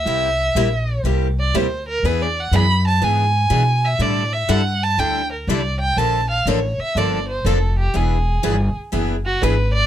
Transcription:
Already playing: E5
0.04 C2 C3 G3 A#3 E4 G4
0.55 A#1 C3 G3 A#3 E4 G4
1.04 C2 C3 G3 A#3 E4 G4
1.39 D5
1.54 D2 C3 G3 A#3 E4 G4 C5
1.88 A#4
2.03 E2 E3 B3 D4 G#4 B4
2.22 D5
2.40 F#5
2.52 F#2 E3 B3 D4 G#4 B4 B5
2.87 A5
3.01 G#2 E3 B3 D4 G#4 B4 G#5
3.50 B2 E3 B3 D4 G#4 B4
3.85 E5
3.99 A2 D3 G3 D4 E4 A4 D5
4.33 E5
4.48 G2 D3 G3 D4 E4 A4 F#5
4.83 A5
4.98 D2 D3 G3 D4 E4 A4 G5
5.32 A#4
5.47 C2 D3 G3 D4 E4 A4 D5
5.80 G5
5.96 A#1 D3 F3 A#3 D4 A4 A5
6.30 F5
6.46 A1 D3 F3 A#3 D4 A4 C#5
6.78 E5, muted upright bass stroke
6.95 G1 D3 F3 A#3 D4 A4 D5
7.28 C5
7.45 F1 D3 F3 A#3 D4 A4
7.79 G4
7.94 E1 E3 B3 D4 G#4 B4
8.43 G1 E3 B3 D4 G#4 B4
8.75 muted upright bass stroke
8.92 F#1 E3 B3 D4 G#4 B4
9.26 F#4
9.41 G#1 E3 B3 D4 G#4 B4
9.73 D5

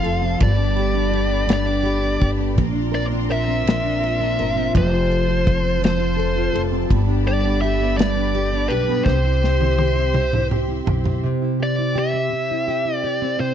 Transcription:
Already playing: F3 C4 F4 A4 C5 F5 A5 C6
0.03 F1 F4 A4, ride
0.22 C4 A4
0.39 G1 G2 G3 G4 D5 B5, kick, ride
0.58 B3 D4
0.76 G4 A4, ride
0.94 B3 D4
1.11 D4 G4, ride
1.29 B3 A4
1.46 G2 G3, ride
1.50 D5, snare
1.66 B3 D4
1.83 G4 A4, ride
2.02 B3 D4
2.20 G1 D4 G4, kick, ride
2.37 B3 A4
2.55 A#1 A#2 F3, kick, ride
2.59 F4 A#5 C6
2.73 C4 D4
2.92 A#4 D5, ride
3.11 C4 D4
3.29 D4 A#4 E5, ride
3.48 C4 A#4
3.65 A#2 F3, snare, ride
3.82 C4 D4
4.01 A#4, ride
4.20 C4 D4
4.39 G1 D4 A#4, ride
4.56 C4 A#4
4.74 F1 F3 C5 A5 C6, kick, ride
4.92 C4 F4
5.10 A4, ride
5.28 C4 F4
5.45 F4 A4, kick, ride
5.63 C4 A4
5.81 F3, ride
5.85 C5, snare
5.98 C4 F4
6.17 A4, ride
6.35 C4 F4
6.53 F1 F4 A4, ride
6.72 C4 A4
6.89 G1 G2 G3 G4 D5 B5, kick, ride
7.07 B3 D4
7.26 G4 A4 D5, ride
7.44 B3 D4
7.61 D4 G4 E5, ride
7.80 B3 A4
7.97 G2 G3 D5, snare, ride
8.16 B3 D4
8.34 G4 A4, ride
8.52 B3 D4
8.68 B1 D4 G4 B4, ride
8.88 B3 A4
9.05 C2 C3 C4 C5 E5 C6, kick, snare
9.23 C4 E4
9.42 G4, snare
9.59 C4 E4, high tom
9.77 E4 G4, high tom
9.96 C4 G4
10.14 C4, mid tom
10.32 C4 E4, mid tom
10.50 G4, mid tom
10.68 C4 E4
10.86 B1 E4 G4, floor tom
11.04 C4 G4, floor tom
11.23 C3
11.42 E4
11.60 G4 D5
11.78 E4
11.95 G4 E5
12.13 C4
12.32 C3
12.51 E4
12.68 G4
12.85 E4
12.97 D5
13.04 G4
13.22 C4
13.39 C3 C5

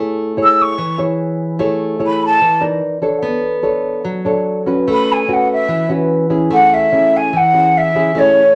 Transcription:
Already playing: A3 E4 G#4 C#5
0.37 E4 G#4 C#5
0.43 E6
0.61 C#6
0.78 E3
0.98 E4 G#4 C#5
1.59 A3 E4 G#4 C#5
1.99 E4 G#4 C#5
2.06 B5
2.25 A5
2.41 E3
2.61 D#4 A#4 D5
3.02 D4 A4 C#5
3.22 B3
3.63 D4 A4 C#5
4.05 F#3
4.25 D4 A4 C#5
4.66 C#4 F#4 B4
4.88 A3
4.93 B5
5.12 G#5
5.28 C#4 F#4 B4
5.33 F#5
5.52 E5
5.68 E3
5.89 C#4 F#4 B4
6.30 C#4 E4 G#4
6.50 A3 F#5
6.73 E5
6.92 C#4 E4 G#4
7.16 G#5
7.33 E3 F#5
7.53 C#4 E4 G#4
7.77 E5
7.95 C#4 E4 G#4
8.15 A3 C#4 E4 G#4 C#5

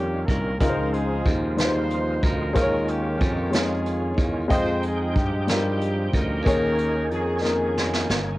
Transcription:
Already playing: F2 D#3 G3 A#3 C#4 D#4 F4 G4 A#4 C#5
0.24 A#4, kick
0.28 C2, closed hi-hat
0.59 C#2 C#3 F3 G#3 C4 D#4 E4 F4 A#4, kick, closed hi-hat
0.63 A#4
0.67 F4 C5
0.91 G#4, closed hi-hat
1.25 D#2, kick, closed hi-hat
1.57 G3 D#4 F4 B4 C5, snare, closed hi-hat
1.61 F4 C5
1.90 closed hi-hat
2.21 D2 A#4, kick, closed hi-hat
2.53 D#2 D#3 G#3 C#4 D#4 F4 A#4 C5, kick, closed hi-hat
2.62 C#5
2.87 A#3 C#4 G4, closed hi-hat
3.21 F2, kick, closed hi-hat
3.50 G#3 D#4 F4 G#4 C#5, closed hi-hat
3.54 C#4 F4, snare
3.86 closed hi-hat
4.18 E2, kick, closed hi-hat
4.48 F2 F3 G#3 D#4 F4 C5 D#5 G5, kick, closed hi-hat
4.53 D#4 G#4
4.83 G#4, closed hi-hat
5.15 G2 G4, kick, closed hi-hat
5.47 G3 C4 D#4 F4 G4 A#4, snare, closed hi-hat
5.81 closed hi-hat
6.13 D2 C#4 A#4, kick, closed hi-hat
6.43 D#2 D#3 A#3 C#4 D#4 G#4, kick, closed hi-hat
6.47 C#5
6.78 closed hi-hat
7.11 F2 G#4, closed hi-hat
7.42 A#3 C#4 D#4 G#4 A#4, snare
7.78 snare
7.93 snare
8.09 G1, snare

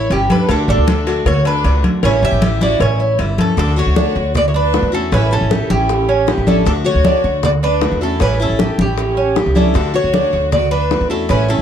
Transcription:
Already playing: E4 C#5
0.10 G1 E3 G3 C#4 E4 G4, cowbell, high conga
0.30 D4 A4 B4, cowbell, high conga
0.49 D2 D3 A3 D4 F#4 A4, cowbell, high conga
0.68 A1 D4 A4, high conga
0.77 D2
0.87 D3 A3 D4 F#4 A4, cowbell, high conga
1.07 A3 D4 F#4, cowbell, high conga
1.26 D2 F#4 C#5, muted steel-string acoustic guitar stroke, cowbell, high conga, low conga
1.45 D4 A4 B4, cowbell, high conga
1.64 C#2 D3 A3 D4 F#4 D5, cowbell, high conga
1.84 cowbell, high conga
2.03 A1 E3 G3 C#4 E4 C#5, cowbell, high conga
2.22 E2 G4 E5, high conga
2.32 A1
2.42 E3 G3 C#4 E4, cowbell, high conga
2.61 G3 C#4 E4 F#4 D5, high conga
2.80 A1 C#4 E4 C#5, muted steel-string acoustic guitar stroke, cowbell, high conga
3.00 E4, high conga
3.19 G1 E3 G3 C#4 E4, cowbell, high conga
3.38 C#4 A4, cowbell, high conga
3.57 D2 D3 A3 D4 F#4 A4, high bongo, high conga
3.76 A3 D4 F#4 C#5, high conga
3.86 D2
3.96 D3 A3 D4 F#4, high bongo, high conga
4.16 D2 F#4, high conga
4.35 F#4 D5, muted steel-string acoustic guitar stroke, high bongo, high conga, low conga
4.46 E4 C#5
4.54 D4 B4, high conga
4.73 D3 A3 D4 F#4, high bongo, low bongo, high conga
4.82 E2
4.92 A3 C#4 D4 E4 F#4 A4
5.12 A1 E3 G3 C#4 E4 B4, high bongo, high conga
5.31 G3 C#4 E4 A4, high bongo, high conga
5.41 A1
5.50 E3 G3 C#4 E4 G4, high bongo, high conga
5.70 A1 C#4 E4 G4, high bongo, high conga
5.89 muted steel-string acoustic guitar stroke, high bongo, high conga
6.09 C#4, high conga
6.27 E3 G3 C#4 E4 G4, high bongo, low bongo, high conga
6.38 A1
6.47 G3 C#4 D4 E4 A4, high bongo, high conga
6.66 D2 D3 A3 D4 F#4 A4, high bongo, high conga
6.84 A3 D4 F#4 C#5, high conga
6.95 D2
7.04 D3 A3 D4 F#4, high bongo, high conga
7.24 D2 F#4, high conga
7.43 F#4 D5, muted steel-string acoustic guitar stroke, high bongo, high conga, low conga
7.62 D4 B4, high conga
7.81 D3 A3 D4 F#4, high bongo, low bongo, high conga
7.92 E2
8.01 A3 C#4 D4 E4 F#4 A4
8.20 A1 E3 G3 C#4 E4 B4, high bongo, high conga
8.40 G3 C#4 E4 A4, high bongo, high conga
8.49 A1
8.59 E3 G3 C#4 E4 G4, high bongo, high conga
8.78 A1 C#4 E4 G4, high bongo, high conga
8.97 muted steel-string acoustic guitar stroke, high bongo, high conga
9.17 C#4, high conga
9.36 E3 G3 C#4 E4 G4, high bongo, low bongo, high conga
9.46 C#2
9.55 G3 C#4 D4 E4 A4, high bongo, high conga
9.74 D2 D3 A3 D4 F#4 A4, high bongo, high conga
9.94 A3 D4 F#4 C#5, high conga
10.04 D2
10.13 D3 A3 D4 F#4, high bongo, high conga
10.33 D2 F#4, high conga
10.52 F#4 D5, muted steel-string acoustic guitar stroke, high bongo, high conga, low conga
10.71 D4 B4, high conga
10.91 D3 A3 D4 F#4, high bongo, low bongo, high conga
11.01 E2
11.10 A3 C#4 D4 E4 F#4 A4
11.29 A1 E3 G3 C#4 E4 B4, high bongo, high conga
11.48 G3 C#4 E4 A4, high bongo, high conga
11.58 A1

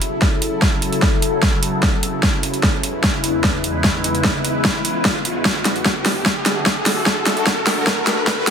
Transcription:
Already playing: C#3 F#3 E4 A4, riser
0.02 closed hi-hat
0.22 kick, snare
0.42 closed hi-hat
0.62 kick, snare
0.82 closed hi-hat
0.93 closed hi-hat
1.02 kick, snare
1.22 closed hi-hat
1.42 kick, snare
1.63 closed hi-hat
1.83 kick, snare
2.03 closed hi-hat
2.23 E2 G#3 E4 B4, kick, snare
2.43 closed hi-hat
2.54 closed hi-hat
2.63 kick, snare
2.83 closed hi-hat
3.04 kick, snare
3.24 closed hi-hat
3.44 kick, snare
3.64 closed hi-hat
3.84 kick, snare
4.04 closed hi-hat
4.15 closed hi-hat
4.24 kick, snare
4.45 closed hi-hat
4.65 kick, snare
4.85 closed hi-hat
5.05 kick, snare
5.25 closed hi-hat
5.45 D3 A3 F#4 A4, kick, snare
5.65 snare, closed hi-hat
5.76 closed hi-hat
5.85 kick, snare
6.06 snare, open hi-hat
6.26 kick, snare
6.46 snare, closed hi-hat
6.66 kick, snare
6.86 snare, open hi-hat
7.06 kick, snare
7.26 snare, closed hi-hat
7.37 closed hi-hat
7.47 kick, snare
7.67 snare, open hi-hat
7.87 kick, snare
8.07 snare, closed hi-hat
8.27 kick, snare
8.47 snare, open hi-hat

